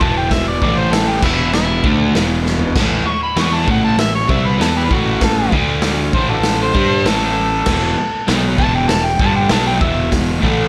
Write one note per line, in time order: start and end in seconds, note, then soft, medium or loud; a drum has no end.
0.00 0.58 E1 medium
0.00 0.60 E2 medium
0.00 0.61 B2 loud
0.00 0.61 E3 loud
0.00 0.16 A5 medium
0.00 kick loud
0.18 0.33 G5 loud
0.31 0.46 E5 loud
0.31 kick loud
0.31 snare loud
0.31 open hi-hat medium
0.48 0.61 D5 medium
0.62 1.19 A1 loud
0.62 1.22 A2 medium
0.62 1.22 E3 loud
0.62 1.23 A3 medium
0.62 0.80 D5 medium
0.62 kick loud
0.78 0.95 C5 medium
0.93 1.10 A4 medium
0.93 snare loud
0.93 open hi-hat medium
1.09 1.25 G4 loud
1.22 1.80 E1 medium
1.22 1.83 E2 medium
1.22 1.84 B2 loud
1.22 1.84 E3 medium
1.22 1.53 E4 medium
1.22 kick loud
1.22 crash loud
1.54 1.83 E4 loud
1.54 snare loud
1.84 2.12 D2 medium
1.84 2.14 D3 medium
1.84 2.14 A3 loud
1.84 2.14 D4 loud
1.84 kick loud
2.15 2.72 E1 medium
2.15 2.75 E2 medium
2.15 2.75 B2 medium
2.15 2.76 E3 medium
2.15 snare loud
2.15 open hi-hat medium
2.46 snare medium
2.59 floor tom medium
2.76 3.04 A1 medium
2.76 3.06 A2 loud
2.76 3.06 E3 medium
2.76 3.07 A3 loud
2.76 kick loud
2.76 snare loud
2.76 crash loud
3.06 3.21 C#6 loud
3.06 muted picked electric bass stroke soft
3.06 muted overdriven electric guitar stroke medium
3.23 3.41 B5 medium
3.36 3.65 E2 loud
3.36 3.66 E3 loud
3.36 3.67 B3 loud
3.36 3.67 E4 loud
3.36 3.56 C#6 loud
3.36 snare loud
3.36 open hi-hat medium
3.55 3.68 A5 medium
3.67 3.96 A1 medium
3.67 3.96 A2 medium
3.67 3.98 E3 loud
3.67 3.98 A3 loud
3.67 kick loud
3.71 3.84 F#5 medium
3.85 3.98 A5 loud
3.97 4.26 A1 medium
3.97 4.22 A2 medium
3.97 4.23 E3 medium
3.97 4.13 E5 loud
3.97 snare loud
3.97 open hi-hat medium
4.15 4.33 C#5 loud
4.28 4.58 C2 loud
4.28 4.58 C3 medium
4.28 4.58 G3 medium
4.28 4.59 C4 medium
4.28 4.48 E5 medium
4.28 kick loud
4.47 4.60 B4 loud
4.58 4.88 E2 medium
4.58 4.89 E3 medium
4.58 4.89 B3 loud
4.58 4.89 E4 medium
4.58 4.75 A4 loud
4.58 snare loud
4.58 open hi-hat medium
4.77 4.84 E4 medium
4.77 4.83 G4 medium
4.77 4.96 B4 medium
4.90 5.48 A1 medium
4.90 5.53 A2 medium
4.90 5.54 E3 loud
4.90 5.54 A3 loud
4.90 kick loud
4.95 5.22 F#4 medium
5.21 5.53 A4 loud
5.21 kick loud
5.21 snare loud
5.21 open hi-hat medium
5.52 6.10 D2 loud
5.52 6.13 D3 loud
5.52 6.13 A3 loud
5.52 6.13 D4 loud
5.52 kick loud
5.82 snare loud
5.82 open hi-hat medium
6.13 6.71 A1 medium
6.13 6.74 A2 medium
6.13 6.74 E3 loud
6.13 6.74 A3 loud
6.13 6.28 C5 loud
6.13 kick loud
6.29 6.37 D4 medium
6.29 6.37 F#4 medium
6.29 6.59 A4 medium
6.43 snare loud
6.43 open hi-hat medium
6.62 7.09 C5 loud
6.74 7.03 G2 loud
6.74 7.04 G3 loud
6.74 7.04 D4 medium
6.74 7.05 G4 loud
6.74 kick loud
7.04 7.62 A1 loud
7.04 7.66 A2 medium
7.04 8.25 A4 loud
7.04 snare loud
7.04 open hi-hat medium
7.08 7.67 E3 loud
7.08 7.67 A3 loud
7.66 7.95 E1 loud
7.66 7.97 E2 medium
7.66 7.97 B2 loud
7.66 7.98 E3 loud
7.66 kick loud
7.66 snare loud
7.66 crash loud
7.97 muted picked electric bass stroke soft
7.97 muted overdriven electric guitar stroke medium
8.27 8.57 B1 loud
8.27 8.57 B2 medium
8.27 8.58 F#3 loud
8.27 8.58 B3 loud
8.27 snare loud
8.27 open hi-hat medium
8.58 8.87 E1 loud
8.58 8.88 E2 loud
8.58 8.88 B2 loud
8.58 8.89 E3 loud
8.58 8.73 A5 loud
8.58 kick loud
8.75 8.91 G5 loud
8.89 9.18 E1 medium
8.89 9.14 E2 medium
8.89 9.14 B2 medium
8.89 9.07 A5 loud
8.89 snare loud
8.89 open hi-hat medium
9.05 9.19 G5 medium
9.19 9.48 G1 medium
9.19 9.50 G2 medium
9.19 9.49 D3 loud
9.19 9.50 G3 loud
9.19 9.35 A5 loud
9.19 kick loud
9.36 9.50 G5 medium
9.49 9.79 B1 loud
9.49 9.79 B2 medium
9.49 9.81 F#3 medium
9.49 9.81 B3 loud
9.49 9.66 A5 loud
9.49 snare loud
9.49 open hi-hat medium
9.67 9.80 G5 loud
9.80 10.39 E1 loud
9.80 10.41 E2 medium
9.80 10.40 B2 loud
9.80 10.41 E3 loud
9.80 10.11 E5 loud
9.80 kick loud
10.12 kick loud
10.12 snare loud
10.12 open hi-hat medium
10.40 10.68 A1 loud
10.40 10.68 A2 medium
10.40 10.68 E3 medium
10.40 10.68 A3 loud
10.40 kick loud